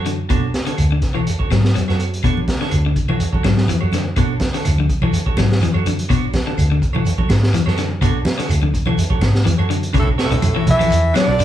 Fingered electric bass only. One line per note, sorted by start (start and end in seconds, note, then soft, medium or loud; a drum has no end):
0.00 0.27 F#2 medium
0.30 0.52 B1 medium
0.78 1.01 D2 medium
1.17 1.27 B1 medium
1.40 muted fingered electric bass stroke soft
1.52 1.73 G#2 medium
1.89 2.21 F#2 medium
2.24 2.46 B1 medium
2.73 2.94 D2 medium
3.09 3.19 B1 medium
3.33 muted fingered electric bass stroke soft
3.44 3.66 G#2 medium
3.83 4.14 F#2 medium
4.17 4.39 B1 medium
4.65 4.87 D2 medium
5.02 5.12 B1 medium
5.27 muted fingered electric bass stroke soft
5.38 5.60 G#2 medium
5.74 6.07 F#2 medium
6.10 6.32 B1 medium
6.58 6.80 D2 medium
6.95 7.05 B1 medium
7.19 muted fingered electric bass stroke soft
7.29 7.52 G#2 medium
7.66 7.99 F#2 medium
8.01 8.24 B1 medium
8.50 8.72 D2 medium
8.87 8.98 B1 medium
9.11 muted fingered electric bass stroke soft
9.22 9.44 G#2 medium
9.59 9.92 F#2 medium
9.95 10.29 B1 medium
10.33 10.64 B1 medium
10.68 10.89 B1 loud
10.91 11.13 E2 loud
11.28 11.45 B1 loud